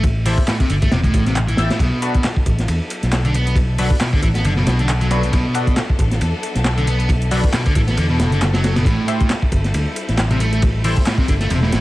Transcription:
Already playing: fingered electric bass A1
0.03 kick, closed hi-hat, ride
0.25 overdriven electric guitar E3, synth stab E4 G4 A4 C5, closed hi-hat, open hi-hat
0.38 kick, closed hi-hat
0.47 overdriven electric guitar A2, snare, clap, closed hi-hat, ride
0.60 overdriven electric guitar C3, kick, closed hi-hat
0.70 fingered electric bass G1, overdriven electric guitar D3, closed hi-hat, ride
0.82 overdriven electric guitar A3, kick, closed hi-hat
0.91 fingered electric bass E1, overdriven electric guitar C3, snare, closed hi-hat, ride
1.04 overdriven electric guitar A2, kick, closed hi-hat
1.13 fingered electric bass A1, kick, closed hi-hat, ride
1.26 overdriven electric guitar C3, snare, closed hi-hat
1.36 clap, closed hi-hat
1.48 overdriven electric guitar E3, closed hi-hat
1.57 fingered electric bass A1, synth stab E4 G4 A4 E5, snare, closed hi-hat, ride
1.70 overdriven electric guitar A2, snare, closed hi-hat, ride
1.79 fingered electric bass B1, overdriven electric guitar B2, string section F#3 B3 D4 A4, kick, closed hi-hat, ride
2.02 synth stab D4 F#4 A4 B4, closed hi-hat, ride
2.15 kick, closed hi-hat
2.24 snare, clap, closed hi-hat, ride
2.37 kick
2.46 fingered electric bass A1, kick, closed hi-hat, ride
2.59 snare, closed hi-hat
2.68 fingered electric bass E2, closed hi-hat, ride
2.90 closed hi-hat, ride
3.03 fingered electric bass B1, snare, closed hi-hat
3.12 snare, clap, closed hi-hat, ride
3.25 overdriven electric guitar D3, closed hi-hat
3.34 overdriven electric guitar B3, closed hi-hat, ride
3.47 overdriven electric guitar B3, closed hi-hat
3.56 kick, closed hi-hat, ride
3.78 overdriven electric guitar F#3, synth stab D4 F#4 A4 B4, closed hi-hat, open hi-hat
3.91 kick, closed hi-hat
4.00 overdriven electric guitar B2, snare, clap, closed hi-hat, ride
4.13 overdriven electric guitar D3, kick
4.22 fingered electric bass A1, overdriven electric guitar E3, kick, closed hi-hat, ride
4.35 overdriven electric guitar B3, snare, closed hi-hat
4.45 fingered electric bass F#1, overdriven electric guitar D3, closed hi-hat, ride
4.56 overdriven electric guitar B2, snare
4.67 fingered electric bass B1, snare, closed hi-hat, ride
4.79 overdriven electric guitar D3, snare, closed hi-hat
4.89 clap, closed hi-hat, ride
5.01 overdriven electric guitar F#3, closed hi-hat
5.10 synth stab D4 F#4 A4 B4, snare, closed hi-hat, ride
5.23 overdriven electric guitar B2, closed hi-hat
5.33 fingered electric bass B1, overdriven electric guitar B2, kick, closed hi-hat, ride
5.54 synth stab D4 F#4 A4 B4, closed hi-hat, ride
5.67 kick, closed hi-hat
5.76 snare, clap, closed hi-hat, ride
5.90 kick
5.99 fingered electric bass A1, kick, closed hi-hat, ride
6.11 snare, closed hi-hat
6.21 fingered electric bass E2, closed hi-hat, ride
6.43 closed hi-hat, ride
6.55 fingered electric bass B1, snare, closed hi-hat
6.64 snare, clap, closed hi-hat, ride
6.78 overdriven electric guitar D3, closed hi-hat
6.87 overdriven electric guitar B3, closed hi-hat, ride
6.99 overdriven electric guitar B3, closed hi-hat
7.09 kick, closed hi-hat, ride
7.22 closed hi-hat
7.31 overdriven electric guitar F#3, synth stab D4 F#4 A4 B4, closed hi-hat, open hi-hat
7.44 kick, closed hi-hat
7.53 overdriven electric guitar B2, snare, clap, closed hi-hat, ride
7.66 overdriven electric guitar D3, kick, closed hi-hat
7.75 fingered electric bass A1, overdriven electric guitar E3, kick, closed hi-hat, ride
7.88 overdriven electric guitar B3, snare, closed hi-hat
7.97 fingered electric bass E2, overdriven electric guitar D3, closed hi-hat, ride
8.10 overdriven electric guitar B2
8.19 fingered electric bass F#1, snare, closed hi-hat, ride
8.32 overdriven electric guitar D3, snare, closed hi-hat
8.41 snare, clap, closed hi-hat, ride
8.54 overdriven electric guitar F#3, snare, closed hi-hat, ride
8.64 snare, closed hi-hat, ride
8.76 overdriven electric guitar B2, snare, closed hi-hat, ride
8.85 fingered electric bass A1, overdriven electric guitar A2, string section G3 C4 E4, kick, closed hi-hat, ride
9.08 synth stab E4 G4 A4 C5, closed hi-hat, ride
9.20 kick, closed hi-hat
9.30 snare, clap, closed hi-hat, ride
9.42 kick
9.52 fingered electric bass G1, kick, closed hi-hat, ride
9.64 snare, closed hi-hat
9.74 fingered electric bass D2, closed hi-hat, ride
9.96 closed hi-hat, ride
10.09 fingered electric bass A1, snare, closed hi-hat
10.18 snare, clap, closed hi-hat, ride
10.31 overdriven electric guitar C3, closed hi-hat
10.40 overdriven electric guitar A3, closed hi-hat, ride
10.53 overdriven electric guitar A3, closed hi-hat
10.62 kick, closed hi-hat, ride
10.84 overdriven electric guitar E3, synth stab E4 G4 A4 C5, closed hi-hat, open hi-hat
10.97 kick, closed hi-hat
11.06 overdriven electric guitar A2, snare, clap, closed hi-hat, ride
11.18 overdriven electric guitar C3, kick
11.28 fingered electric bass G1, overdriven electric guitar D3, kick, closed hi-hat, ride
11.40 overdriven electric guitar A3, snare, closed hi-hat
11.50 fingered electric bass E1, overdriven electric guitar C3, closed hi-hat, ride
11.63 overdriven electric guitar A2, snare
11.72 fingered electric bass A1, snare, closed hi-hat, ride

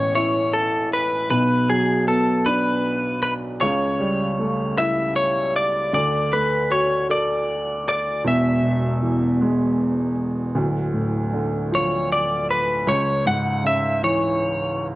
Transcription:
Already playing: grand piano A1 A2 E3 C#4, clean electric guitar C#5
0.15 grand piano E4, clean electric guitar C#5
0.53 clean electric guitar A4
0.93 clean electric guitar B4
1.30 grand piano B1 B2, clean electric guitar B4
1.69 grand piano F#3, clean electric guitar G#4
2.07 grand piano B3, clean electric guitar A4
2.46 grand piano D4, clean electric guitar B4
3.23 clean electric guitar B4
3.61 grand piano C#2 C#3, clean electric guitar C#5
4.00 grand piano G3
4.39 grand piano A3
4.78 grand piano E4, clean electric guitar E5
5.16 clean electric guitar C#5
5.56 clean electric guitar D5
5.93 grand piano D2 D3, clean electric guitar D5
6.33 grand piano A3, clean electric guitar B4
6.70 grand piano F#4, clean electric guitar C#5
7.10 grand piano A4, clean electric guitar D5
7.89 clean electric guitar D5
8.24 grand piano E1 E2, clean electric guitar E5
8.63 grand piano B2
9.02 grand piano E3
9.41 grand piano G#3
10.55 grand piano D1 D2
10.94 grand piano A2
11.33 grand piano D3
11.72 grand piano F3, clean electric guitar C#5
12.12 clean electric guitar D5
12.51 clean electric guitar B4
12.87 grand piano C#2, clean electric guitar C#5
13.26 grand piano G#2, clean electric guitar F#5
13.64 grand piano C#3, clean electric guitar E5
14.03 grand piano E3, clean electric guitar C#5

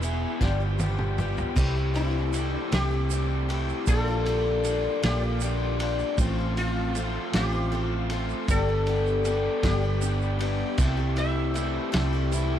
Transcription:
Already playing: fingered electric bass E1, sitar E4, tonewheel organ G#4 E5 B5
0.02 twelve-string acoustic guitar E3 G#3 B3 E4, overdriven electric guitar G#4, ride, shaker
0.41 fingered electric bass G1, twelve-string acoustic guitar G2 D3 F3 G3 B3 G4, tonewheel organ G4 G5, kick, snare
0.60 twelve-string acoustic guitar F3 G3 B3 G4
0.78 twelve-string acoustic guitar F3 G3 B3 G4, high tom, shaker
0.99 mid tom
1.18 twelve-string acoustic guitar F3 G3 B3 G4, mid tom, shaker
1.37 floor tom, shaker
1.56 fingered electric bass C2, twelve-string acoustic guitar C3 E3 A3 E4 G4, overdriven electric guitar G3 C4, tonewheel organ A4 E5 C6, kick, crash, shaker
1.76 twelve-string acoustic guitar A3 E4 G4
1.94 twelve-string acoustic guitar E3 A3 E4 G4, overdriven electric guitar G3 C4, sitar E4, ride, shaker
2.33 twelve-string acoustic guitar E3 A3 E4 G4, overdriven electric guitar G3 C4, ride, shaker
2.53 sitar D4
2.72 fingered electric bass C2, twelve-string acoustic guitar C3 E3 A3 E4 G4, overdriven electric guitar G3 C4, sitar G4, snare, ride
2.91 twelve-string acoustic guitar A3 E4 G4
3.10 twelve-string acoustic guitar E3 A3 E4 G4, overdriven electric guitar G3 C4, ride, shaker
3.49 twelve-string acoustic guitar E3 A3 E4 G4, overdriven electric guitar G3 C4, ride
3.69 shaker
3.87 fingered electric bass A#1, twelve-string acoustic guitar A#2 D3 G3 D4 F4, tonewheel organ A#3 G5 D6, overdriven electric guitar A#3, sitar A4, kick, ride, shaker
4.08 twelve-string acoustic guitar G3 D4 F4
4.25 twelve-string acoustic guitar D3 G3 D4 F4, overdriven electric guitar A#3, ride
4.64 twelve-string acoustic guitar D3 G3 D4 F4, overdriven electric guitar A#3, ride, shaker
5.03 fingered electric bass A#1, twelve-string acoustic guitar A#2 D3 G3 D4 F4, overdriven electric guitar A#3, sitar G4, snare, ride
5.22 twelve-string acoustic guitar G3 D4 F4
5.41 twelve-string acoustic guitar D3 G3 D4 F4, overdriven electric guitar A#3, ride, shaker
5.79 twelve-string acoustic guitar D3 G3 D4 F4, overdriven electric guitar A#3, ride
5.99 shaker
6.18 fingered electric bass A1, twelve-string acoustic guitar A2 F3 A3 C4 F4, tonewheel organ A4 F5 C6, kick, ride, shaker
6.38 twelve-string acoustic guitar A3 C4 F4
6.56 twelve-string acoustic guitar F3 A3 C4, overdriven electric guitar F4, sitar F4, ride, shaker
6.61 twelve-string acoustic guitar F4
6.95 twelve-string acoustic guitar F3 A3 C4, ride, shaker
6.99 twelve-string acoustic guitar F4
7.33 fingered electric bass A1, twelve-string acoustic guitar A2 F3 A3 C4 F4, sitar G4, snare, ride
7.52 twelve-string acoustic guitar A3 C4 F4
7.72 twelve-string acoustic guitar F3 A3 C4 F4, ride
7.88 sitar F4
8.10 twelve-string acoustic guitar F3 A3 C4 F4, ride
8.30 shaker
8.48 fingered electric bass G1, twelve-string acoustic guitar G2 D3 G3 B3 D4 G4, tonewheel organ G4 D5 B5, sitar A4, kick, ride, shaker
8.68 twelve-string acoustic guitar G3 B3 D4 G4
8.86 twelve-string acoustic guitar G3 B3 D4 G4, ride
9.07 shaker
9.24 twelve-string acoustic guitar G3 B3 D4 G4, ride, shaker
9.63 fingered electric bass G1, twelve-string acoustic guitar G2 D3 G3 B3 D4 G4, sitar G4, kick, snare, ride
9.82 twelve-string acoustic guitar G3 B3 D4 G4
10.01 twelve-string acoustic guitar G3 B3 D4 G4, ride, shaker
10.21 shaker
10.39 twelve-string acoustic guitar G3 B3 D4 G4, ride
10.78 fingered electric bass C2, twelve-string acoustic guitar C3 E3 A3 E4 G4, overdriven electric guitar G3 C4, tonewheel organ A4 E5 C6, kick, crash, shaker
10.97 twelve-string acoustic guitar A3 E4 G4
11.16 twelve-string acoustic guitar E3 A3 E4 G4, overdriven electric guitar G3 C4, sitar E5, ride, shaker
11.54 twelve-string acoustic guitar E3 A3 E4 G4, overdriven electric guitar G3 C4, ride, shaker
11.92 fingered electric bass C2, twelve-string acoustic guitar C3 E3 A3 E4 G4, overdriven electric guitar C4, snare, ride
11.96 overdriven electric guitar G3
12.13 twelve-string acoustic guitar A3 E4 G4
12.32 twelve-string acoustic guitar E3 A3 E4 G4, overdriven electric guitar G3 C4, ride, shaker
12.40 sitar D5

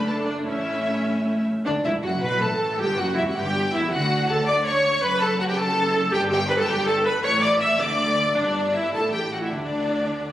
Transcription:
Already playing: double bass section F#1, viola section A3 D4, cello section D4
0.06 violin section A4 A5
0.25 violin section D4 D5
0.46 double bass section A1, viola section A3 C#4, cello section C#4, violin section E4 E5
1.65 cello section D2, double bass section D2, viola section D4, violin section D4 D5
1.84 double bass section E1, cello section E2, violin section E4 E5, viola section E4
2.02 double bass section F#1, cello section F#2, violin section F#4 F#5, viola section F#4
2.21 double bass section B1, cello section B2, violin section B4 B5, viola section B4
2.41 double bass section A1, cello section A2, violin section A4 A5, viola section A4
2.78 double bass section G1, cello section G2, viola section G4, violin section G4 G5
2.97 double bass section F#1, cello section F#2, viola section F#4, violin section F#4 F#5
3.16 double bass section E1, cello section E2, violin section E4 E5, viola section E4
3.24 cello section F#2, violin section F#4, viola section F#4
3.29 violin section F#5
3.34 double bass section G1, cello section G2, violin section G4 G5, viola section G4
3.73 double bass section E1, cello section E2, violin section E4 E5, viola section E4
3.91 double bass section D2, cello section D3, violin section F#4 F#5, viola section F#4
4.28 viola section A4, violin section A4 A5
4.46 violin section D5 D6, viola section D5
4.64 violin section C#5 C#6, viola section C#5
5.02 double bass section F#1, cello section F#2, viola section B4, violin section B4 B5
5.20 viola section A4, violin section A4 A5
5.40 viola section F#4, violin section F#4 F#5
5.48 viola section G4, violin section G4 G5
5.58 viola section A4, violin section A4 A5
6.12 double bass section G1, cello section G2, viola section G4, violin section G4 G5
6.30 viola section G4, violin section G4 G5
6.49 viola section B4, violin section B4 B5
6.57 viola section A4, violin section A4 A5
6.66 double bass section G1, cello section G2, viola section G4, violin section G4 G5
6.86 viola section A4, violin section A4 A5
7.05 viola section B4, violin section B4 B5
7.23 double bass section A1, cello section A2, viola section C#5, violin section C#5 C#6
7.41 viola section D5, violin section D5 D6
7.60 viola section E5, violin section E5 E6
7.79 double bass section D2, cello section D3, violin section D5 D6, viola section D5
8.35 double bass section G1, cello section G2, viola section D4, violin section D4 D5
8.73 viola section E4, violin section E4 E5
8.93 double bass section A1, cello section A2, violin section A4 A5, viola section A4
9.12 viola section G4, violin section G4 G5
9.32 viola section F#4, violin section F#4 F#5
9.42 viola section E4, violin section E4 E5
9.53 double bass section D2, cello section D3, viola section D4, violin section D4 D5

